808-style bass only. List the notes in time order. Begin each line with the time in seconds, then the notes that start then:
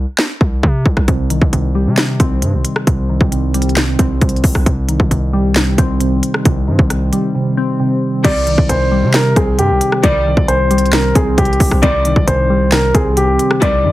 0.41 C2
0.63 C3
0.86 C2
1.08 C2
1.42 C2
1.53 C2
1.86 C3
2.20 C2
2.42 G2
2.54 C2
2.87 C2
3.21 C2
3.99 C2
4.22 C2
4.44 C2
4.66 C2
5.00 C2
5.11 C2
5.78 C2
6.45 C2
6.68 G2
6.79 C2
8.24 C2
8.58 C2
8.69 C2
9.03 C3
9.36 C2
9.59 G2
9.70 C2
10.04 C2
10.37 C2
11.15 C2
11.38 C2
11.60 C2
11.83 C2
12.16 C2
12.27 C2
12.95 C2
13.62 C2
13.84 G2